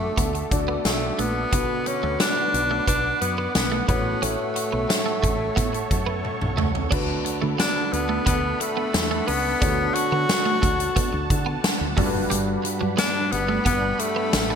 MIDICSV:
0, 0, Header, 1, 8, 480
1, 0, Start_track
1, 0, Tempo, 674157
1, 1087, Time_signature, 4, 2, 24, 8
1, 10362, End_track
2, 0, Start_track
2, 0, Title_t, "Analog synth pad"
2, 0, Program_c, 0, 89
2, 0, Note_on_c, 0, 69, 72
2, 0, Note_on_c, 0, 78, 64
2, 0, Note_on_c, 0, 86, 76
2, 1060, Note_off_c, 0, 78, 0
2, 1060, Note_off_c, 0, 86, 0
2, 1069, Note_off_c, 0, 69, 0
2, 1086, Note_on_c, 0, 86, 79
2, 1087, Note_on_c, 0, 71, 74
2, 1087, Note_on_c, 0, 78, 65
2, 2750, Note_off_c, 0, 71, 0
2, 2750, Note_off_c, 0, 86, 0
2, 2771, Note_on_c, 0, 73, 68
2, 2773, Note_on_c, 0, 69, 72
2, 2773, Note_on_c, 0, 85, 80
2, 4898, Note_off_c, 0, 78, 0
2, 4907, Note_off_c, 0, 73, 0
2, 4908, Note_off_c, 0, 69, 0
2, 4908, Note_off_c, 0, 85, 0
2, 4930, Note_on_c, 0, 62, 70
2, 4931, Note_on_c, 0, 69, 75
2, 4931, Note_on_c, 0, 78, 67
2, 4931, Note_on_c, 0, 83, 81
2, 6830, Note_off_c, 0, 83, 0
2, 6852, Note_on_c, 0, 81, 83
2, 8501, Note_off_c, 0, 69, 0
2, 8513, Note_off_c, 0, 81, 0
2, 8528, Note_on_c, 0, 55, 75
2, 8529, Note_on_c, 0, 83, 87
2, 10362, Note_off_c, 0, 55, 0
2, 10362, Note_off_c, 0, 62, 0
2, 10362, Note_off_c, 0, 78, 0
2, 10362, Note_off_c, 0, 83, 0
2, 10362, End_track
3, 0, Start_track
3, 0, Title_t, "Grand piano"
3, 0, Program_c, 1, 0
3, 0, Control_c, 1, 64, 127
3, 0, Note_on_c, 1, 50, 56
3, 0, Note_on_c, 1, 57, 57
3, 0, Note_on_c, 1, 62, 54
3, 0, Note_on_c, 1, 66, 54
3, 0, Note_on_c, 1, 74, 62
3, 338, Note_off_c, 1, 57, 0
3, 340, Note_off_c, 1, 62, 0
3, 344, Note_off_c, 1, 66, 0
3, 346, Note_off_c, 1, 74, 0
3, 364, Note_on_c, 1, 57, 51
3, 367, Note_on_c, 1, 62, 48
3, 369, Note_on_c, 1, 66, 50
3, 371, Note_on_c, 1, 74, 59
3, 1079, Note_on_c, 1, 59, 60
3, 1080, Note_off_c, 1, 66, 0
3, 1086, Note_off_c, 1, 50, 0
3, 1086, Note_off_c, 1, 57, 0
3, 1086, Note_on_c, 1, 50, 55
3, 1087, Note_off_c, 1, 62, 0
3, 1089, Note_off_c, 1, 74, 0
3, 1089, Note_on_c, 1, 47, 61
3, 1091, Note_on_c, 1, 66, 55
3, 1096, Note_on_c, 1, 71, 64
3, 1097, Control_c, 1, 64, 0
3, 1218, Control_c, 1, 64, 127
3, 1780, Note_off_c, 1, 47, 0
3, 2734, Note_off_c, 1, 59, 0
3, 2738, Note_off_c, 1, 50, 0
3, 2740, Note_off_c, 1, 66, 0
3, 2743, Note_off_c, 1, 71, 0
3, 2760, Note_on_c, 1, 57, 57
3, 2764, Note_on_c, 1, 61, 56
3, 2769, Note_on_c, 1, 45, 57
3, 2770, Note_on_c, 1, 66, 52
3, 2775, Note_on_c, 1, 73, 66
3, 2777, Control_c, 1, 64, 0
3, 2911, Control_c, 1, 64, 127
3, 3459, Note_off_c, 1, 45, 0
3, 4655, Note_off_c, 1, 57, 0
3, 4657, Note_off_c, 1, 61, 0
3, 4660, Note_off_c, 1, 66, 0
3, 4662, Note_off_c, 1, 73, 0
3, 4916, Note_on_c, 1, 57, 78
3, 4923, Note_on_c, 1, 62, 68
3, 4924, Note_on_c, 1, 50, 73
3, 4927, Note_on_c, 1, 66, 67
3, 4933, Note_on_c, 1, 71, 82
3, 4935, Control_c, 1, 64, 0
3, 5049, Control_c, 1, 64, 127
3, 5617, Note_off_c, 1, 50, 0
3, 6813, Note_off_c, 1, 57, 0
3, 6816, Note_off_c, 1, 62, 0
3, 6818, Note_off_c, 1, 66, 0
3, 6821, Note_off_c, 1, 71, 0
3, 6840, Note_on_c, 1, 57, 64
3, 6844, Note_on_c, 1, 62, 58
3, 6849, Note_on_c, 1, 50, 63
3, 6851, Note_on_c, 1, 66, 55
3, 6857, Note_on_c, 1, 73, 70
3, 7539, Note_off_c, 1, 50, 0
3, 8495, Note_off_c, 1, 57, 0
3, 8497, Note_off_c, 1, 62, 0
3, 8501, Note_off_c, 1, 66, 0
3, 8504, Note_off_c, 1, 73, 0
3, 8520, Note_on_c, 1, 55, 77
3, 8526, Note_on_c, 1, 62, 69
3, 8529, Note_on_c, 1, 43, 78
3, 8531, Note_on_c, 1, 66, 68
3, 8535, Control_c, 1, 64, 0
3, 8537, Note_on_c, 1, 69, 70
3, 8578, Note_off_c, 1, 69, 0
3, 8583, Note_on_c, 1, 71, 85
3, 8664, Control_c, 1, 64, 127
3, 9220, Note_off_c, 1, 43, 0
3, 10362, Note_off_c, 1, 55, 0
3, 10362, Note_off_c, 1, 62, 0
3, 10362, Note_off_c, 1, 66, 0
3, 10362, Note_off_c, 1, 71, 0
3, 10362, End_track
4, 0, Start_track
4, 0, Title_t, "Clean electric guitar"
4, 0, Program_c, 2, 27
4, 124, Note_on_c, 2, 59, 80
4, 210, Note_off_c, 2, 59, 0
4, 486, Note_on_c, 2, 59, 74
4, 571, Note_off_c, 2, 59, 0
4, 845, Note_on_c, 2, 57, 65
4, 931, Note_off_c, 2, 57, 0
4, 1086, Note_on_c, 2, 59, 81
4, 1172, Note_off_c, 2, 59, 0
4, 1446, Note_on_c, 2, 57, 62
4, 1531, Note_off_c, 2, 57, 0
4, 1569, Note_on_c, 2, 59, 69
4, 1654, Note_off_c, 2, 59, 0
4, 1928, Note_on_c, 2, 57, 67
4, 2013, Note_off_c, 2, 57, 0
4, 2047, Note_on_c, 2, 59, 78
4, 2132, Note_off_c, 2, 59, 0
4, 2407, Note_on_c, 2, 59, 70
4, 2492, Note_off_c, 2, 59, 0
4, 2646, Note_on_c, 2, 57, 62
4, 2731, Note_off_c, 2, 57, 0
4, 2765, Note_on_c, 2, 59, 65
4, 2851, Note_off_c, 2, 59, 0
4, 3006, Note_on_c, 2, 61, 84
4, 3091, Note_off_c, 2, 61, 0
4, 3364, Note_on_c, 2, 59, 58
4, 3450, Note_off_c, 2, 59, 0
4, 3601, Note_on_c, 2, 57, 74
4, 3688, Note_off_c, 2, 57, 0
4, 3721, Note_on_c, 2, 57, 74
4, 3808, Note_off_c, 2, 57, 0
4, 3960, Note_on_c, 2, 59, 86
4, 4048, Note_off_c, 2, 59, 0
4, 4318, Note_on_c, 2, 59, 74
4, 4406, Note_off_c, 2, 59, 0
4, 4680, Note_on_c, 2, 57, 70
4, 4768, Note_off_c, 2, 57, 0
4, 4918, Note_on_c, 2, 62, 85
4, 5007, Note_off_c, 2, 62, 0
4, 5280, Note_on_c, 2, 57, 68
4, 5368, Note_off_c, 2, 57, 0
4, 5400, Note_on_c, 2, 59, 78
4, 5488, Note_off_c, 2, 59, 0
4, 5760, Note_on_c, 2, 57, 69
4, 5847, Note_off_c, 2, 57, 0
4, 5881, Note_on_c, 2, 59, 85
4, 5968, Note_off_c, 2, 59, 0
4, 6244, Note_on_c, 2, 59, 68
4, 6330, Note_off_c, 2, 59, 0
4, 6487, Note_on_c, 2, 57, 70
4, 6572, Note_off_c, 2, 57, 0
4, 6606, Note_on_c, 2, 59, 73
4, 6691, Note_off_c, 2, 59, 0
4, 6848, Note_on_c, 2, 62, 83
4, 6932, Note_off_c, 2, 62, 0
4, 7208, Note_on_c, 2, 59, 67
4, 7293, Note_off_c, 2, 59, 0
4, 7443, Note_on_c, 2, 57, 76
4, 7530, Note_off_c, 2, 57, 0
4, 7562, Note_on_c, 2, 57, 76
4, 7649, Note_off_c, 2, 57, 0
4, 7803, Note_on_c, 2, 59, 88
4, 7890, Note_off_c, 2, 59, 0
4, 8160, Note_on_c, 2, 59, 73
4, 8248, Note_off_c, 2, 59, 0
4, 8521, Note_on_c, 2, 57, 71
4, 8608, Note_off_c, 2, 57, 0
4, 8759, Note_on_c, 2, 55, 83
4, 8847, Note_off_c, 2, 55, 0
4, 9119, Note_on_c, 2, 54, 71
4, 9207, Note_off_c, 2, 54, 0
4, 9236, Note_on_c, 2, 59, 81
4, 9325, Note_off_c, 2, 59, 0
4, 9602, Note_on_c, 2, 57, 80
4, 9689, Note_off_c, 2, 57, 0
4, 9719, Note_on_c, 2, 59, 83
4, 9807, Note_off_c, 2, 59, 0
4, 10083, Note_on_c, 2, 59, 71
4, 10169, Note_off_c, 2, 59, 0
4, 10327, Note_on_c, 2, 57, 70
4, 10362, Note_off_c, 2, 57, 0
4, 10362, End_track
5, 0, Start_track
5, 0, Title_t, "Tenor saxophone"
5, 0, Program_c, 3, 66
5, 0, Note_on_c, 3, 57, 91
5, 388, Note_off_c, 3, 57, 0
5, 609, Note_on_c, 3, 57, 77
5, 850, Note_on_c, 3, 59, 84
5, 860, Note_off_c, 3, 57, 0
5, 1334, Note_on_c, 3, 61, 82
5, 1345, Note_off_c, 3, 59, 0
5, 1570, Note_off_c, 3, 61, 0
5, 1573, Note_on_c, 3, 62, 81
5, 2022, Note_off_c, 3, 62, 0
5, 2054, Note_on_c, 3, 62, 82
5, 2274, Note_off_c, 3, 62, 0
5, 2290, Note_on_c, 3, 59, 76
5, 2511, Note_off_c, 3, 59, 0
5, 2531, Note_on_c, 3, 59, 74
5, 2752, Note_off_c, 3, 59, 0
5, 2767, Note_on_c, 3, 59, 73
5, 3011, Note_on_c, 3, 57, 77
5, 3022, Note_off_c, 3, 59, 0
5, 4689, Note_off_c, 3, 57, 0
5, 5410, Note_on_c, 3, 62, 79
5, 5645, Note_on_c, 3, 59, 81
5, 5656, Note_off_c, 3, 62, 0
5, 5883, Note_off_c, 3, 59, 0
5, 5887, Note_on_c, 3, 59, 84
5, 6126, Note_on_c, 3, 57, 85
5, 6137, Note_off_c, 3, 59, 0
5, 6601, Note_on_c, 3, 59, 95
5, 6612, Note_off_c, 3, 57, 0
5, 7078, Note_on_c, 3, 66, 104
5, 7088, Note_off_c, 3, 59, 0
5, 8042, Note_off_c, 3, 66, 0
5, 9250, Note_on_c, 3, 62, 84
5, 9483, Note_on_c, 3, 59, 84
5, 9494, Note_off_c, 3, 62, 0
5, 9720, Note_off_c, 3, 59, 0
5, 9725, Note_on_c, 3, 59, 83
5, 9966, Note_on_c, 3, 57, 87
5, 9977, Note_off_c, 3, 59, 0
5, 10362, Note_off_c, 3, 57, 0
5, 10362, End_track
6, 0, Start_track
6, 0, Title_t, "Fretless electric bass"
6, 0, Program_c, 4, 35
6, 126, Note_on_c, 4, 38, 89
6, 306, Note_off_c, 4, 38, 0
6, 368, Note_on_c, 4, 38, 75
6, 547, Note_off_c, 4, 38, 0
6, 606, Note_on_c, 4, 35, 77
6, 786, Note_off_c, 4, 35, 0
6, 848, Note_on_c, 4, 34, 78
6, 1027, Note_off_c, 4, 34, 0
6, 1087, Note_on_c, 4, 35, 95
6, 1177, Note_off_c, 4, 35, 0
6, 1449, Note_on_c, 4, 38, 87
6, 1538, Note_off_c, 4, 38, 0
6, 1808, Note_on_c, 4, 35, 84
6, 1988, Note_off_c, 4, 35, 0
6, 2048, Note_on_c, 4, 35, 82
6, 2227, Note_off_c, 4, 35, 0
6, 2290, Note_on_c, 4, 42, 75
6, 2469, Note_off_c, 4, 42, 0
6, 2529, Note_on_c, 4, 35, 87
6, 2708, Note_off_c, 4, 35, 0
6, 2769, Note_on_c, 4, 33, 86
6, 2948, Note_off_c, 4, 33, 0
6, 3012, Note_on_c, 4, 33, 104
6, 3100, Note_off_c, 4, 33, 0
6, 3370, Note_on_c, 4, 35, 78
6, 3459, Note_off_c, 4, 35, 0
6, 3729, Note_on_c, 4, 33, 87
6, 3908, Note_off_c, 4, 33, 0
6, 3967, Note_on_c, 4, 45, 97
6, 4147, Note_off_c, 4, 45, 0
6, 4208, Note_on_c, 4, 42, 84
6, 4478, Note_off_c, 4, 42, 0
6, 4571, Note_on_c, 4, 35, 78
6, 4692, Note_off_c, 4, 35, 0
6, 4692, Note_on_c, 4, 37, 84
6, 4870, Note_off_c, 4, 37, 0
6, 4926, Note_on_c, 4, 38, 98
6, 5106, Note_off_c, 4, 38, 0
6, 5291, Note_on_c, 4, 50, 89
6, 5379, Note_off_c, 4, 50, 0
6, 5646, Note_on_c, 4, 38, 83
6, 5826, Note_off_c, 4, 38, 0
6, 5886, Note_on_c, 4, 38, 88
6, 6066, Note_off_c, 4, 38, 0
6, 6368, Note_on_c, 4, 40, 96
6, 6547, Note_off_c, 4, 40, 0
6, 6611, Note_on_c, 4, 37, 84
6, 6790, Note_off_c, 4, 37, 0
6, 6849, Note_on_c, 4, 38, 105
6, 7028, Note_off_c, 4, 38, 0
6, 7206, Note_on_c, 4, 50, 90
6, 7296, Note_off_c, 4, 50, 0
6, 7569, Note_on_c, 4, 38, 96
6, 7748, Note_off_c, 4, 38, 0
6, 7930, Note_on_c, 4, 38, 90
6, 8018, Note_off_c, 4, 38, 0
6, 8048, Note_on_c, 4, 50, 91
6, 8228, Note_off_c, 4, 50, 0
6, 8410, Note_on_c, 4, 38, 90
6, 8499, Note_off_c, 4, 38, 0
6, 8526, Note_on_c, 4, 31, 89
6, 8617, Note_off_c, 4, 31, 0
6, 8650, Note_on_c, 4, 30, 85
6, 8739, Note_off_c, 4, 30, 0
6, 8768, Note_on_c, 4, 31, 112
6, 8947, Note_off_c, 4, 31, 0
6, 9131, Note_on_c, 4, 43, 89
6, 9219, Note_off_c, 4, 43, 0
6, 9488, Note_on_c, 4, 31, 94
6, 9668, Note_off_c, 4, 31, 0
6, 9726, Note_on_c, 4, 31, 102
6, 9906, Note_off_c, 4, 31, 0
6, 10210, Note_on_c, 4, 33, 98
6, 10362, Note_off_c, 4, 33, 0
6, 10362, End_track
7, 0, Start_track
7, 0, Title_t, "Muted clean electric guitar strokes"
7, 248, Note_on_c, 9, 29, 40
7, 319, Note_off_c, 9, 29, 0
7, 1327, Note_on_c, 9, 29, 43
7, 1398, Note_off_c, 9, 29, 0
7, 1688, Note_on_c, 9, 29, 40
7, 1759, Note_off_c, 9, 29, 0
7, 2288, Note_on_c, 9, 29, 42
7, 2359, Note_off_c, 9, 29, 0
7, 2531, Note_on_c, 9, 29, 40
7, 2602, Note_off_c, 9, 29, 0
7, 3246, Note_on_c, 9, 29, 43
7, 3317, Note_off_c, 9, 29, 0
7, 3484, Note_on_c, 9, 29, 43
7, 3555, Note_off_c, 9, 29, 0
7, 4081, Note_on_c, 9, 29, 40
7, 4152, Note_off_c, 9, 29, 0
7, 5161, Note_on_c, 9, 29, 45
7, 5232, Note_off_c, 9, 29, 0
7, 5519, Note_on_c, 9, 29, 43
7, 5590, Note_off_c, 9, 29, 0
7, 6125, Note_on_c, 9, 29, 43
7, 6196, Note_off_c, 9, 29, 0
7, 6362, Note_on_c, 9, 29, 43
7, 6433, Note_off_c, 9, 29, 0
7, 7091, Note_on_c, 9, 29, 47
7, 7162, Note_off_c, 9, 29, 0
7, 7328, Note_on_c, 9, 29, 44
7, 7399, Note_off_c, 9, 29, 0
7, 7922, Note_on_c, 9, 29, 42
7, 7993, Note_off_c, 9, 29, 0
7, 8997, Note_on_c, 9, 29, 46
7, 9068, Note_off_c, 9, 29, 0
7, 9362, Note_on_c, 9, 29, 45
7, 9433, Note_off_c, 9, 29, 0
7, 9964, Note_on_c, 9, 29, 44
7, 10036, Note_off_c, 9, 29, 0
7, 10206, Note_on_c, 9, 29, 47
7, 10277, Note_off_c, 9, 29, 0
7, 10362, End_track
8, 0, Start_track
8, 0, Title_t, "Drums"
8, 125, Note_on_c, 9, 36, 81
8, 125, Note_on_c, 9, 42, 77
8, 196, Note_off_c, 9, 36, 0
8, 196, Note_off_c, 9, 42, 0
8, 248, Note_on_c, 9, 42, 49
8, 319, Note_off_c, 9, 42, 0
8, 366, Note_on_c, 9, 36, 82
8, 368, Note_on_c, 9, 42, 65
8, 437, Note_off_c, 9, 36, 0
8, 439, Note_off_c, 9, 42, 0
8, 605, Note_on_c, 9, 42, 81
8, 606, Note_on_c, 9, 38, 101
8, 677, Note_off_c, 9, 38, 0
8, 677, Note_off_c, 9, 42, 0
8, 845, Note_on_c, 9, 42, 61
8, 917, Note_off_c, 9, 42, 0
8, 1086, Note_on_c, 9, 42, 92
8, 1087, Note_on_c, 9, 36, 101
8, 1157, Note_off_c, 9, 42, 0
8, 1158, Note_off_c, 9, 36, 0
8, 1325, Note_on_c, 9, 42, 72
8, 1396, Note_off_c, 9, 42, 0
8, 1566, Note_on_c, 9, 38, 107
8, 1567, Note_on_c, 9, 42, 77
8, 1637, Note_off_c, 9, 38, 0
8, 1638, Note_off_c, 9, 42, 0
8, 1810, Note_on_c, 9, 42, 68
8, 1881, Note_off_c, 9, 42, 0
8, 2047, Note_on_c, 9, 36, 80
8, 2049, Note_on_c, 9, 42, 84
8, 2118, Note_off_c, 9, 36, 0
8, 2120, Note_off_c, 9, 42, 0
8, 2289, Note_on_c, 9, 42, 63
8, 2360, Note_off_c, 9, 42, 0
8, 2527, Note_on_c, 9, 42, 77
8, 2528, Note_on_c, 9, 38, 102
8, 2599, Note_off_c, 9, 38, 0
8, 2599, Note_off_c, 9, 42, 0
8, 2767, Note_on_c, 9, 36, 92
8, 2767, Note_on_c, 9, 42, 64
8, 2838, Note_off_c, 9, 42, 0
8, 2839, Note_off_c, 9, 36, 0
8, 3009, Note_on_c, 9, 42, 87
8, 3080, Note_off_c, 9, 42, 0
8, 3246, Note_on_c, 9, 42, 75
8, 3317, Note_off_c, 9, 42, 0
8, 3489, Note_on_c, 9, 38, 103
8, 3489, Note_on_c, 9, 42, 72
8, 3560, Note_off_c, 9, 38, 0
8, 3561, Note_off_c, 9, 42, 0
8, 3728, Note_on_c, 9, 36, 83
8, 3732, Note_on_c, 9, 42, 62
8, 3799, Note_off_c, 9, 36, 0
8, 3803, Note_off_c, 9, 42, 0
8, 3967, Note_on_c, 9, 36, 83
8, 3970, Note_on_c, 9, 42, 88
8, 4038, Note_off_c, 9, 36, 0
8, 4041, Note_off_c, 9, 42, 0
8, 4089, Note_on_c, 9, 42, 50
8, 4160, Note_off_c, 9, 42, 0
8, 4207, Note_on_c, 9, 36, 86
8, 4208, Note_on_c, 9, 42, 63
8, 4278, Note_off_c, 9, 36, 0
8, 4280, Note_off_c, 9, 42, 0
8, 4448, Note_on_c, 9, 48, 50
8, 4519, Note_off_c, 9, 48, 0
8, 4567, Note_on_c, 9, 47, 60
8, 4639, Note_off_c, 9, 47, 0
8, 4687, Note_on_c, 9, 45, 80
8, 4758, Note_off_c, 9, 45, 0
8, 4807, Note_on_c, 9, 43, 76
8, 4878, Note_off_c, 9, 43, 0
8, 4927, Note_on_c, 9, 36, 105
8, 4927, Note_on_c, 9, 49, 91
8, 4998, Note_off_c, 9, 36, 0
8, 4998, Note_off_c, 9, 49, 0
8, 5167, Note_on_c, 9, 42, 78
8, 5238, Note_off_c, 9, 42, 0
8, 5408, Note_on_c, 9, 38, 104
8, 5409, Note_on_c, 9, 42, 83
8, 5479, Note_off_c, 9, 38, 0
8, 5480, Note_off_c, 9, 42, 0
8, 5649, Note_on_c, 9, 42, 65
8, 5720, Note_off_c, 9, 42, 0
8, 5885, Note_on_c, 9, 36, 86
8, 5886, Note_on_c, 9, 42, 90
8, 5957, Note_off_c, 9, 36, 0
8, 5957, Note_off_c, 9, 42, 0
8, 6128, Note_on_c, 9, 42, 69
8, 6199, Note_off_c, 9, 42, 0
8, 6367, Note_on_c, 9, 38, 109
8, 6367, Note_on_c, 9, 42, 85
8, 6438, Note_off_c, 9, 38, 0
8, 6438, Note_off_c, 9, 42, 0
8, 6606, Note_on_c, 9, 46, 67
8, 6677, Note_off_c, 9, 46, 0
8, 6848, Note_on_c, 9, 36, 109
8, 6848, Note_on_c, 9, 42, 98
8, 6919, Note_off_c, 9, 36, 0
8, 6919, Note_off_c, 9, 42, 0
8, 7088, Note_on_c, 9, 42, 79
8, 7159, Note_off_c, 9, 42, 0
8, 7329, Note_on_c, 9, 38, 106
8, 7330, Note_on_c, 9, 42, 87
8, 7401, Note_off_c, 9, 38, 0
8, 7401, Note_off_c, 9, 42, 0
8, 7568, Note_on_c, 9, 36, 88
8, 7571, Note_on_c, 9, 42, 70
8, 7639, Note_off_c, 9, 36, 0
8, 7642, Note_off_c, 9, 42, 0
8, 7689, Note_on_c, 9, 42, 57
8, 7760, Note_off_c, 9, 42, 0
8, 7807, Note_on_c, 9, 36, 87
8, 7807, Note_on_c, 9, 42, 90
8, 7878, Note_off_c, 9, 36, 0
8, 7878, Note_off_c, 9, 42, 0
8, 8048, Note_on_c, 9, 36, 96
8, 8049, Note_on_c, 9, 42, 65
8, 8119, Note_off_c, 9, 36, 0
8, 8120, Note_off_c, 9, 42, 0
8, 8288, Note_on_c, 9, 42, 86
8, 8289, Note_on_c, 9, 38, 112
8, 8359, Note_off_c, 9, 42, 0
8, 8360, Note_off_c, 9, 38, 0
8, 8526, Note_on_c, 9, 46, 72
8, 8527, Note_on_c, 9, 36, 99
8, 8597, Note_off_c, 9, 46, 0
8, 8598, Note_off_c, 9, 36, 0
8, 8766, Note_on_c, 9, 42, 93
8, 8837, Note_off_c, 9, 42, 0
8, 9004, Note_on_c, 9, 42, 82
8, 9076, Note_off_c, 9, 42, 0
8, 9245, Note_on_c, 9, 38, 109
8, 9246, Note_on_c, 9, 42, 86
8, 9316, Note_off_c, 9, 38, 0
8, 9317, Note_off_c, 9, 42, 0
8, 9486, Note_on_c, 9, 42, 73
8, 9557, Note_off_c, 9, 42, 0
8, 9725, Note_on_c, 9, 36, 88
8, 9725, Note_on_c, 9, 42, 87
8, 9796, Note_off_c, 9, 36, 0
8, 9796, Note_off_c, 9, 42, 0
8, 9964, Note_on_c, 9, 42, 69
8, 10036, Note_off_c, 9, 42, 0
8, 10204, Note_on_c, 9, 38, 114
8, 10204, Note_on_c, 9, 42, 88
8, 10275, Note_off_c, 9, 38, 0
8, 10275, Note_off_c, 9, 42, 0
8, 10362, End_track
0, 0, End_of_file